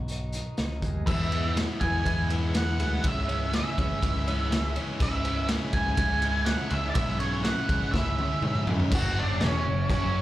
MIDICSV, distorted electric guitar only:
0, 0, Header, 1, 2, 480
1, 0, Start_track
1, 0, Tempo, 491400
1, 1047, Time_signature, 4, 2, 24, 8
1, 9980, End_track
2, 0, Start_track
2, 0, Title_t, "Distorted electric guitar"
2, 0, Program_c, 0, 30
2, 1043, Note_on_c, 0, 52, 92
2, 1051, Note_on_c, 0, 56, 96
2, 1058, Note_on_c, 0, 59, 97
2, 1059, Note_on_c, 0, 64, 99
2, 1277, Note_off_c, 0, 52, 0
2, 1281, Note_on_c, 0, 52, 82
2, 1283, Note_off_c, 0, 59, 0
2, 1286, Note_off_c, 0, 56, 0
2, 1290, Note_on_c, 0, 56, 85
2, 1295, Note_on_c, 0, 59, 88
2, 1297, Note_off_c, 0, 64, 0
2, 1301, Note_on_c, 0, 64, 88
2, 1512, Note_off_c, 0, 52, 0
2, 1514, Note_off_c, 0, 59, 0
2, 1515, Note_on_c, 0, 52, 79
2, 1517, Note_off_c, 0, 56, 0
2, 1521, Note_on_c, 0, 56, 67
2, 1526, Note_on_c, 0, 59, 81
2, 1529, Note_off_c, 0, 64, 0
2, 1533, Note_on_c, 0, 64, 82
2, 1751, Note_off_c, 0, 52, 0
2, 1755, Note_on_c, 0, 52, 76
2, 1756, Note_off_c, 0, 59, 0
2, 1760, Note_off_c, 0, 56, 0
2, 1763, Note_on_c, 0, 56, 87
2, 1768, Note_on_c, 0, 59, 76
2, 1769, Note_off_c, 0, 64, 0
2, 1773, Note_on_c, 0, 64, 86
2, 1988, Note_off_c, 0, 52, 0
2, 1992, Note_on_c, 0, 52, 92
2, 1994, Note_off_c, 0, 56, 0
2, 1996, Note_off_c, 0, 59, 0
2, 1998, Note_on_c, 0, 56, 78
2, 2007, Note_off_c, 0, 64, 0
2, 2007, Note_on_c, 0, 59, 93
2, 2010, Note_on_c, 0, 64, 98
2, 2239, Note_off_c, 0, 52, 0
2, 2240, Note_off_c, 0, 59, 0
2, 2243, Note_on_c, 0, 52, 73
2, 2248, Note_off_c, 0, 56, 0
2, 2252, Note_on_c, 0, 56, 83
2, 2252, Note_on_c, 0, 59, 81
2, 2254, Note_off_c, 0, 64, 0
2, 2258, Note_on_c, 0, 64, 91
2, 2480, Note_off_c, 0, 52, 0
2, 2483, Note_off_c, 0, 59, 0
2, 2484, Note_off_c, 0, 56, 0
2, 2484, Note_on_c, 0, 52, 86
2, 2487, Note_on_c, 0, 56, 92
2, 2494, Note_off_c, 0, 64, 0
2, 2494, Note_on_c, 0, 59, 85
2, 2498, Note_on_c, 0, 64, 96
2, 2721, Note_off_c, 0, 52, 0
2, 2725, Note_on_c, 0, 52, 76
2, 2729, Note_off_c, 0, 59, 0
2, 2730, Note_off_c, 0, 56, 0
2, 2733, Note_on_c, 0, 56, 65
2, 2741, Note_on_c, 0, 59, 68
2, 2744, Note_off_c, 0, 64, 0
2, 2747, Note_on_c, 0, 64, 68
2, 2962, Note_off_c, 0, 59, 0
2, 2963, Note_off_c, 0, 52, 0
2, 2967, Note_on_c, 0, 49, 91
2, 2970, Note_off_c, 0, 56, 0
2, 2973, Note_on_c, 0, 56, 104
2, 2982, Note_off_c, 0, 64, 0
2, 2983, Note_on_c, 0, 61, 105
2, 2986, Note_on_c, 0, 64, 111
2, 3205, Note_off_c, 0, 49, 0
2, 3208, Note_off_c, 0, 56, 0
2, 3209, Note_on_c, 0, 49, 82
2, 3212, Note_on_c, 0, 56, 90
2, 3217, Note_off_c, 0, 61, 0
2, 3220, Note_on_c, 0, 61, 88
2, 3221, Note_off_c, 0, 64, 0
2, 3224, Note_on_c, 0, 64, 93
2, 3449, Note_off_c, 0, 49, 0
2, 3453, Note_on_c, 0, 49, 69
2, 3457, Note_off_c, 0, 56, 0
2, 3461, Note_on_c, 0, 56, 74
2, 3462, Note_off_c, 0, 61, 0
2, 3466, Note_off_c, 0, 64, 0
2, 3466, Note_on_c, 0, 61, 78
2, 3470, Note_on_c, 0, 64, 78
2, 3691, Note_off_c, 0, 49, 0
2, 3695, Note_on_c, 0, 49, 79
2, 3697, Note_off_c, 0, 56, 0
2, 3701, Note_on_c, 0, 56, 78
2, 3706, Note_off_c, 0, 61, 0
2, 3708, Note_off_c, 0, 64, 0
2, 3710, Note_on_c, 0, 61, 85
2, 3712, Note_on_c, 0, 64, 85
2, 3924, Note_off_c, 0, 49, 0
2, 3928, Note_on_c, 0, 49, 84
2, 3929, Note_off_c, 0, 56, 0
2, 3933, Note_on_c, 0, 56, 77
2, 3939, Note_off_c, 0, 61, 0
2, 3943, Note_on_c, 0, 61, 88
2, 3946, Note_off_c, 0, 64, 0
2, 3950, Note_on_c, 0, 64, 97
2, 4161, Note_off_c, 0, 49, 0
2, 4164, Note_on_c, 0, 49, 78
2, 4168, Note_off_c, 0, 56, 0
2, 4172, Note_on_c, 0, 56, 92
2, 4173, Note_off_c, 0, 61, 0
2, 4177, Note_on_c, 0, 61, 83
2, 4178, Note_off_c, 0, 64, 0
2, 4182, Note_on_c, 0, 64, 91
2, 4404, Note_off_c, 0, 49, 0
2, 4408, Note_on_c, 0, 49, 82
2, 4409, Note_off_c, 0, 56, 0
2, 4413, Note_off_c, 0, 61, 0
2, 4413, Note_on_c, 0, 56, 95
2, 4417, Note_on_c, 0, 61, 102
2, 4421, Note_off_c, 0, 64, 0
2, 4425, Note_on_c, 0, 64, 94
2, 4646, Note_off_c, 0, 49, 0
2, 4649, Note_on_c, 0, 49, 69
2, 4651, Note_off_c, 0, 56, 0
2, 4654, Note_off_c, 0, 61, 0
2, 4655, Note_on_c, 0, 56, 72
2, 4658, Note_on_c, 0, 61, 85
2, 4663, Note_off_c, 0, 64, 0
2, 4667, Note_on_c, 0, 64, 75
2, 4882, Note_off_c, 0, 49, 0
2, 4886, Note_on_c, 0, 49, 95
2, 4888, Note_off_c, 0, 56, 0
2, 4892, Note_on_c, 0, 56, 96
2, 4893, Note_off_c, 0, 61, 0
2, 4897, Note_on_c, 0, 61, 101
2, 4899, Note_off_c, 0, 64, 0
2, 4903, Note_on_c, 0, 64, 98
2, 5132, Note_off_c, 0, 49, 0
2, 5136, Note_on_c, 0, 49, 81
2, 5142, Note_off_c, 0, 56, 0
2, 5144, Note_off_c, 0, 61, 0
2, 5146, Note_on_c, 0, 56, 92
2, 5148, Note_on_c, 0, 61, 97
2, 5149, Note_off_c, 0, 64, 0
2, 5153, Note_on_c, 0, 64, 92
2, 5367, Note_off_c, 0, 49, 0
2, 5371, Note_on_c, 0, 49, 73
2, 5375, Note_off_c, 0, 56, 0
2, 5379, Note_on_c, 0, 56, 74
2, 5382, Note_off_c, 0, 61, 0
2, 5384, Note_off_c, 0, 64, 0
2, 5386, Note_on_c, 0, 61, 70
2, 5388, Note_on_c, 0, 64, 86
2, 5596, Note_off_c, 0, 49, 0
2, 5600, Note_on_c, 0, 49, 77
2, 5607, Note_off_c, 0, 56, 0
2, 5610, Note_off_c, 0, 61, 0
2, 5611, Note_on_c, 0, 56, 89
2, 5614, Note_on_c, 0, 61, 82
2, 5619, Note_off_c, 0, 64, 0
2, 5623, Note_on_c, 0, 64, 91
2, 5825, Note_off_c, 0, 49, 0
2, 5831, Note_off_c, 0, 56, 0
2, 5837, Note_on_c, 0, 49, 88
2, 5843, Note_on_c, 0, 56, 92
2, 5845, Note_off_c, 0, 61, 0
2, 5845, Note_off_c, 0, 64, 0
2, 5849, Note_on_c, 0, 61, 102
2, 5856, Note_on_c, 0, 64, 99
2, 6061, Note_off_c, 0, 49, 0
2, 6070, Note_off_c, 0, 56, 0
2, 6073, Note_on_c, 0, 49, 79
2, 6081, Note_off_c, 0, 64, 0
2, 6081, Note_on_c, 0, 56, 82
2, 6082, Note_off_c, 0, 61, 0
2, 6086, Note_on_c, 0, 61, 96
2, 6093, Note_on_c, 0, 64, 91
2, 6304, Note_off_c, 0, 49, 0
2, 6305, Note_off_c, 0, 56, 0
2, 6316, Note_on_c, 0, 49, 81
2, 6317, Note_on_c, 0, 56, 89
2, 6318, Note_off_c, 0, 61, 0
2, 6318, Note_off_c, 0, 64, 0
2, 6322, Note_on_c, 0, 61, 99
2, 6330, Note_on_c, 0, 64, 106
2, 6534, Note_off_c, 0, 49, 0
2, 6539, Note_off_c, 0, 56, 0
2, 6546, Note_on_c, 0, 49, 77
2, 6551, Note_on_c, 0, 56, 77
2, 6552, Note_off_c, 0, 64, 0
2, 6554, Note_off_c, 0, 61, 0
2, 6558, Note_on_c, 0, 61, 80
2, 6563, Note_on_c, 0, 64, 78
2, 6768, Note_off_c, 0, 49, 0
2, 6774, Note_off_c, 0, 56, 0
2, 6780, Note_on_c, 0, 49, 112
2, 6781, Note_off_c, 0, 61, 0
2, 6786, Note_on_c, 0, 56, 112
2, 6789, Note_off_c, 0, 64, 0
2, 6793, Note_on_c, 0, 61, 97
2, 6800, Note_on_c, 0, 64, 100
2, 7006, Note_off_c, 0, 49, 0
2, 7011, Note_off_c, 0, 56, 0
2, 7018, Note_on_c, 0, 49, 83
2, 7022, Note_on_c, 0, 56, 92
2, 7024, Note_off_c, 0, 61, 0
2, 7027, Note_off_c, 0, 64, 0
2, 7035, Note_on_c, 0, 61, 94
2, 7039, Note_on_c, 0, 64, 94
2, 7244, Note_off_c, 0, 49, 0
2, 7255, Note_on_c, 0, 49, 77
2, 7258, Note_off_c, 0, 56, 0
2, 7258, Note_off_c, 0, 61, 0
2, 7265, Note_off_c, 0, 64, 0
2, 7270, Note_on_c, 0, 56, 74
2, 7270, Note_on_c, 0, 61, 83
2, 7277, Note_on_c, 0, 64, 96
2, 7495, Note_off_c, 0, 49, 0
2, 7504, Note_off_c, 0, 56, 0
2, 7507, Note_on_c, 0, 49, 79
2, 7509, Note_off_c, 0, 61, 0
2, 7516, Note_off_c, 0, 64, 0
2, 7516, Note_on_c, 0, 56, 84
2, 7520, Note_on_c, 0, 61, 88
2, 7528, Note_on_c, 0, 64, 92
2, 7743, Note_off_c, 0, 49, 0
2, 7749, Note_off_c, 0, 56, 0
2, 7755, Note_on_c, 0, 49, 98
2, 7756, Note_off_c, 0, 61, 0
2, 7760, Note_on_c, 0, 56, 97
2, 7762, Note_off_c, 0, 64, 0
2, 7767, Note_on_c, 0, 61, 88
2, 7773, Note_on_c, 0, 64, 117
2, 7981, Note_off_c, 0, 49, 0
2, 7991, Note_off_c, 0, 56, 0
2, 7993, Note_on_c, 0, 49, 77
2, 7994, Note_off_c, 0, 61, 0
2, 8003, Note_off_c, 0, 64, 0
2, 8003, Note_on_c, 0, 56, 82
2, 8006, Note_on_c, 0, 61, 95
2, 8014, Note_on_c, 0, 64, 100
2, 8228, Note_off_c, 0, 49, 0
2, 8229, Note_off_c, 0, 56, 0
2, 8237, Note_off_c, 0, 61, 0
2, 8240, Note_on_c, 0, 49, 102
2, 8241, Note_off_c, 0, 64, 0
2, 8241, Note_on_c, 0, 56, 100
2, 8249, Note_on_c, 0, 61, 102
2, 8253, Note_on_c, 0, 64, 101
2, 8458, Note_off_c, 0, 49, 0
2, 8466, Note_off_c, 0, 56, 0
2, 8470, Note_on_c, 0, 49, 76
2, 8471, Note_off_c, 0, 61, 0
2, 8477, Note_off_c, 0, 64, 0
2, 8478, Note_on_c, 0, 56, 77
2, 8483, Note_on_c, 0, 61, 75
2, 8488, Note_on_c, 0, 64, 81
2, 8701, Note_off_c, 0, 49, 0
2, 8705, Note_off_c, 0, 56, 0
2, 8707, Note_off_c, 0, 61, 0
2, 8710, Note_off_c, 0, 64, 0
2, 8712, Note_on_c, 0, 42, 100
2, 8721, Note_on_c, 0, 49, 99
2, 8725, Note_on_c, 0, 54, 118
2, 9187, Note_off_c, 0, 42, 0
2, 9191, Note_on_c, 0, 40, 89
2, 9192, Note_off_c, 0, 49, 0
2, 9194, Note_off_c, 0, 54, 0
2, 9201, Note_on_c, 0, 47, 95
2, 9202, Note_on_c, 0, 52, 97
2, 9427, Note_off_c, 0, 40, 0
2, 9432, Note_off_c, 0, 47, 0
2, 9433, Note_off_c, 0, 52, 0
2, 9435, Note_on_c, 0, 42, 57
2, 9438, Note_on_c, 0, 49, 63
2, 9628, Note_off_c, 0, 42, 0
2, 9630, Note_off_c, 0, 49, 0
2, 9668, Note_on_c, 0, 42, 85
2, 9675, Note_on_c, 0, 49, 109
2, 9679, Note_on_c, 0, 54, 99
2, 9980, Note_off_c, 0, 42, 0
2, 9980, Note_off_c, 0, 49, 0
2, 9980, Note_off_c, 0, 54, 0
2, 9980, End_track
0, 0, End_of_file